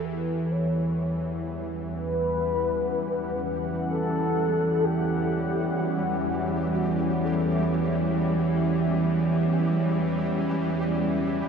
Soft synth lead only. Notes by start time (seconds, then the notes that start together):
0.04 B4
0.51 C#5
1.99 B4
3.91 A4
4.84 G4
5.80 F#4
6.73 F#4
7.24 A4